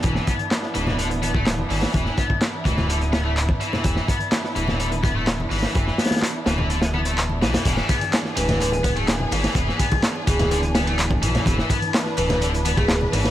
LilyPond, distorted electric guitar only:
\new Staff \with { instrumentName = "Distorted electric guitar" } { \clef bass \time 4/4 \key c \lydian \tempo 4 = 126 e16 e16 b16 r8. e8 d16 r16 b16 a16 r8 e8 | e16 e16 b16 r8. e8 d16 r16 b16 a16 r8 e8 | e16 e16 b16 r8. e8 d16 r16 b16 a16 r8 e8 | e16 e16 b16 r8. e8 d16 r16 b16 a16 r8 e8 |
e16 e16 b16 r8. e8 d16 r16 b16 a16 r8 e8 | e16 e16 b16 r8. e8 d16 r16 b16 a16 r8 e8 | e16 e16 b16 r8. e8 d16 r16 b16 a16 r8 e8 | }